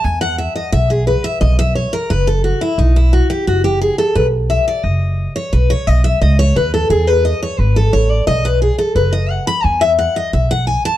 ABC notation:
X:1
M:4/4
L:1/8
Q:1/4=175
K:E
V:1 name="Steel-string acoustic guitar"
g f e d e G B e | d e c ^A B =A F E | D E F =G F G ^G A | B z e =d ^d3 c |
B c d e d c B A | G B d c B A c =d | d B G A B d f b | g e f d e f g a |]
V:2 name="Upright bass" clef=bass
E,,4 B,,,4 | B,,,4 F,,,4 | B,,,4 F,,,4 | B,,,4 F,,,4 |
B,,,2 B,,,2 C,,2 D,,2 | E,,4 G,,,2 A,,,2 | B,,,4 F,,,4 | E,,4 B,,,4 |]